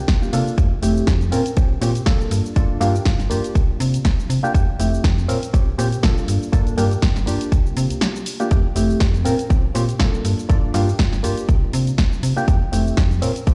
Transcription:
0.08 C2, kick, snare, closed hi-hat, cabasa
0.21 A#3 D4 F4 G4, cabasa
0.33 C3 A#3 D4 F4 A4, open hi-hat, cabasa
0.48 cabasa
0.58 F2 E4 G4, kick, closed hi-hat, cabasa
0.82 F1 A3 C4 E4 G4, open hi-hat, cabasa
0.97 cabasa
1.07 F2, kick, snare, closed hi-hat, cabasa
1.21 closed hi-hat, cabasa
1.32 A#2 C4 C#4 F4 A#4, open hi-hat, cabasa
1.46 closed hi-hat, cabasa
1.57 A#1 C4 C#4 F4 G4, kick, closed hi-hat, cabasa
1.81 A#2 C4 C#4 F4 G4, open hi-hat, cabasa
1.95 closed hi-hat, cabasa
2.06 A#1 A#3 D4 F4 A4, kick, snare, closed hi-hat, cabasa
2.21 cabasa
2.31 G2, open hi-hat, cabasa
2.46 cabasa
2.56 G1 A#3 D4 F4 A4, kick, closed hi-hat, cabasa
2.70 G2
2.80 G2 A#3 D4 F4 G4, open hi-hat, cabasa
2.95 cabasa
3.05 G1, kick, snare, closed hi-hat, cabasa
3.19 snare, closed hi-hat, cabasa
3.30 G2 A#3 D4 F4 G4, open hi-hat, cabasa
3.44 closed hi-hat, cabasa
3.55 C2, kick, closed hi-hat, cabasa
3.80 C3, open hi-hat, cabasa
3.94 closed hi-hat, cabasa
4.05 C2, kick, snare, closed hi-hat, cabasa
4.20 cabasa
4.30 C3, open hi-hat, cabasa
4.43 A#3 D4 F4 G4, cabasa
4.54 F2, kick, closed hi-hat, cabasa
4.79 F1 A3 C4 E4 G4, open hi-hat, cabasa
4.94 cabasa
5.04 F2, kick, snare, closed hi-hat, cabasa
5.18 closed hi-hat, cabasa
5.28 A#2 C4 C#4 F4 A#4, open hi-hat, cabasa
5.43 closed hi-hat, cabasa
5.53 A#1 C4 C#4 F4 G4, kick, closed hi-hat, cabasa
5.78 A#2 C4 C#4 F4 G4, open hi-hat, cabasa
5.92 closed hi-hat, cabasa
6.03 A#1 A#3 D4 F4 A4, kick, snare, closed hi-hat, cabasa
6.18 cabasa
6.28 G2, open hi-hat, cabasa
6.43 cabasa
6.52 G1 A#3 D4 F4 A4, kick, closed hi-hat, cabasa
6.67 G2, closed hi-hat, cabasa
6.77 G2 A#3 D4 F4 G4, open hi-hat, cabasa
6.91 closed hi-hat, cabasa
7.02 G1, kick, snare, closed hi-hat, cabasa
7.16 snare, closed hi-hat, cabasa
7.26 G2 A#3 D4 F4 G4, open hi-hat, cabasa
7.41 closed hi-hat, cabasa
7.52 C2, kick, closed hi-hat, cabasa
7.66 C3, cabasa
7.77 C3, open hi-hat, cabasa
7.90 C2, closed hi-hat, cabasa
8.01 snare, closed hi-hat, cabasa
8.16 cabasa
8.26 open hi-hat, cabasa
8.40 A#3 D4 F4 G4, closed hi-hat, cabasa
8.51 F2 A3 G4, kick, closed hi-hat, cabasa
8.75 F1 A3 C4 E4 G4, open hi-hat, cabasa
8.90 cabasa
9.00 F2, kick, snare, closed hi-hat, cabasa
9.14 closed hi-hat, cabasa
9.25 A#2 C4 C#4 F4 A#4, open hi-hat, cabasa
9.39 closed hi-hat, cabasa
9.50 A#1 C4 C#4 F4 G4, kick, closed hi-hat, cabasa
9.74 A#2 C4 C#4 F4 G4, open hi-hat, cabasa
9.89 closed hi-hat, cabasa
9.99 A#1 A#3 D4 F4 A4, kick, snare, closed hi-hat, cabasa
10.14 cabasa
10.25 G2, open hi-hat, cabasa
10.39 cabasa
10.49 G1 A#3 D4 F4 A4, kick, closed hi-hat, cabasa
10.63 G2
10.74 G2 A#3 D4 F4 G4, open hi-hat, cabasa
10.89 cabasa
10.99 G1, kick, snare, closed hi-hat, cabasa
11.13 snare, closed hi-hat, cabasa
11.23 G2 A#3 D4 F4 G4, open hi-hat, cabasa
11.38 closed hi-hat, cabasa
11.49 C2, kick, closed hi-hat, cabasa
11.73 C3, open hi-hat, cabasa
11.87 closed hi-hat, cabasa
11.98 C2, kick, snare, closed hi-hat, cabasa
12.13 cabasa
12.23 C3, open hi-hat, cabasa
12.36 A#3 D4 F4 G4, cabasa
12.48 F2, kick, closed hi-hat, cabasa
12.72 F1 A3 C4 E4 G4, open hi-hat, cabasa
12.87 cabasa
12.97 F2, kick, snare, closed hi-hat, cabasa
13.11 closed hi-hat, cabasa
13.22 A#2 C4 C#4 F4 A#4, open hi-hat, cabasa
13.36 closed hi-hat, cabasa
13.47 A#1 C4 C#4 F4 G4, kick, closed hi-hat, cabasa

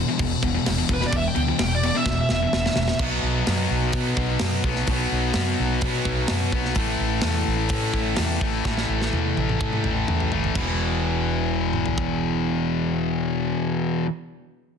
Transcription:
0.08 E2 B2
0.19 E1 E2 B2, kick, crash
0.42 E1 E2 B2, kick, crash
0.54 E2 B2
0.66 E1 E2 B2, snare, crash
0.78 E2 B2
0.89 E1 E2 B2, kick, crash
0.94 B4
1.01 E2 B2, snare
1.07 D5
1.12 E1 E2 B2, kick, crash
1.17 E5
1.28 G5
1.35 D2 E2 B2, crash
1.48 E2 B2
1.58 E1 E2 B2, snare, crash
1.75 D5
1.83 E2 B2 D5, crash
1.95 E2 B2 E5
2.06 E1 E2 B2, kick, snare
2.21 E5
2.29 E1 E2 B2 E5, snare
2.42 E2 B2
2.53 E1 E2 B2, snare
2.65 E2 B2, snare
2.76 E1 E2 B2, snare
2.88 E2 B2, snare
2.99 B1 B2 F#3, kick, crash
3.03 B3
3.23 B1
3.47 F#2, snare, open hi-hat
3.71 B1
3.93 B2 F#3, kick, open hi-hat
3.97 B3
4.17 B1, kick
4.39 F#2, snare, open hi-hat
4.64 B1 F#3 B3, kick
4.68 B2
4.76 snare
4.87 B1 B2, kick, open hi-hat
4.91 F#3 B3
5.12 B1
5.34 F#2, snare, open hi-hat
5.60 B1
5.81 B2 F#3, kick, open hi-hat
5.85 B3
6.05 B1, kick
6.28 F#2, snare, open hi-hat
6.52 B1 B2 F#3 B3, kick
6.65 snare
6.75 A1 A2 E3 A3, kick, open hi-hat
7.00 A1
7.21 E2, snare, open hi-hat
7.48 A1
7.68 A2 E3 A3, kick, open hi-hat
7.94 A1, kick
8.16 E2, snare, open hi-hat
8.41 A1 E3 A3, kick
8.45 A2
8.65 A1 A2 E3 A3, kick, snare
8.77 snare
8.89 A1
9.02 snare
9.13 E2, high tom
9.37 A1, high tom
9.49 mid tom
9.59 A2 E3 A3, kick
9.73 mid tom
9.84 A1, mid tom
10.08 E2, mid tom
10.20 floor tom
10.32 F#1 A2 E3 A3, floor tom
10.44 floor tom
10.54 E1 E2 B2, kick, crash
10.58 E3
11.73 mid tom
11.86 floor tom
11.98 kick

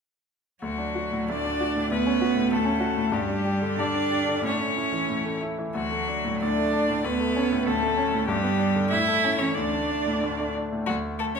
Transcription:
0.62 D2 F#3 F#4
0.78 D4
0.95 F#4
1.12 A2
1.29 D2 D4 D5
1.45 D4
1.60 F#4
1.76 A2
1.91 D2 B3 B4
2.06 C#4
2.21 F#4
2.35 A2
2.51 D2 A3 A4
2.65 C#4
2.80 F#4
2.97 A2
3.12 G2 G3 G4
3.29 D4
3.45 G4
3.62 D3
3.77 G2 D4 D5
3.95 D4
4.10 G4
4.28 D3
4.42 A2 C#4 C#5
4.52 D4
4.59 A3 C#4
4.77 E4
4.92 E3
5.09 A2
5.25 A3
5.41 E4
5.58 E3
5.74 D2 F#3 F#4
5.91 A3
6.08 D4
6.25 A2
6.42 D2 D4 D5
6.58 A3
6.73 D4
6.89 A2
7.04 D2 B3 B4
7.20 A3
7.36 C#4
7.52 A2
7.67 D2 A3 A4
7.82 A3
7.97 C#4
8.13 A2
8.26 G2 G3 G4
8.43 B3
8.59 D4
8.75 D3
8.89 A2 E4 E5
9.08 A3
9.24 C#4
9.38 E3 C#4 C#5
9.54 D2 D4 D5
9.74 A3
9.91 D4
10.07 A2
10.23 D2
10.39 A3
10.55 D4
10.72 A2
10.86 D2 F#3 F#4
11.19 A3 A4
11.34 C#4 C#5

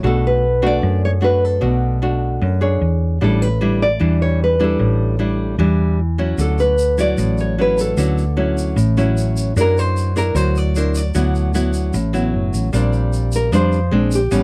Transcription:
0.03 B1 B2 A3 D4 F#4 A4
0.27 B4
0.62 A3 D4 F#4
0.67 D5
0.82 F#2
1.05 C#5
1.21 A3 D4 F#4 B4
1.45 A4
1.61 B1 B2 A3 D4 F#4
2.02 A3 D4 F#4
2.41 F#2
2.61 D4 G#4 C#5
2.81 E2
3.21 A1 A2 G3 D4 E4 A4
3.42 B4
3.61 G3 D4 E4
3.82 D5
4.00 E2 E3 G3 D4 E4
4.22 C#5
4.44 B4
4.60 G3 D4 E4
4.64 A4
4.79 A1 A2
5.19 G3 D4 E4
5.58 E2 E3 G3 D4 E4
6.18 F#3 C#4 E4
6.38 D2 D3 A4, shaker
6.59 B4, shaker
6.78 shaker
6.98 F#3 E4 D5, shaker
7.18 A1 A2, shaker
7.38 C#5, shaker
7.58 F#3 C#4 E4 B4
7.78 A4, shaker
7.97 D2 D3 F#3 C#4 E4, shaker
8.18 shaker
8.37 F#3 C#4 E4
8.58 shaker
8.76 A1 A2, shaker
8.97 F#3 C#4 E4, shaker
9.17 shaker
9.37 shaker
9.56 F#2 F#3 D4 E4 A#4, shaker
9.61 A#4
9.77 C5, shaker
9.97 shaker
10.16 D4 E4 A#4, shaker
10.35 D2 F#3 C5, shaker
10.56 D5, shaker
10.76 D4 E4 A#4 C5, shaker
10.95 D5, shaker
11.15 D2 D3 F#3 B3 E4, shaker
11.35 shaker
11.54 F#3 B3 E4, shaker
11.73 shaker
11.94 A1 A2, shaker
12.13 F#3 B3 E4, shaker
12.34 F#1
12.53 A1, shaker
12.73 A#1 A#2 G3 C4 D4, shaker
12.93 shaker
13.13 shaker
13.32 A#4, shaker
13.52 F2 F3 G3 C4 D4 C5, shaker
13.72 shaker
13.91 A#1 G#3 C4 D4
14.12 G4, shaker
14.31 A1 A2 G3 B3 C#4, shaker

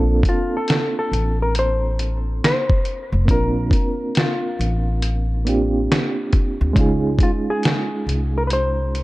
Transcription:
Already playing: A#1 A#3 C4 D4 F4 A4
0.23 kick, closed hi-hat
0.29 F4
0.57 A4
0.68 snare, closed hi-hat
0.99 A4
1.12 A1, closed hi-hat
1.42 A#4
1.55 C5, closed hi-hat
1.99 closed hi-hat
2.44 C5, snare, closed hi-hat
2.70 kick
2.85 closed hi-hat
3.12 F1
3.25 A#1 A#3 C4 D4, kick, closed hi-hat
3.31 F4 A#4
3.71 kick, closed hi-hat
4.15 F4, snare, closed hi-hat
4.59 A1, closed hi-hat
5.02 closed hi-hat
5.45 A#3 C4 D4 F4, closed hi-hat
5.49 G4
5.92 snare, closed hi-hat
6.33 kick, closed hi-hat
6.61 D2
6.73 C#2 G#3 C#4 D#4, kick, closed hi-hat
6.79 F4 G#4
7.19 kick, closed hi-hat
7.23 F4
7.50 G#4
7.63 snare, closed hi-hat
8.07 C2, closed hi-hat
8.38 A#4
8.47 B4, closed hi-hat
8.53 C5
8.95 closed hi-hat

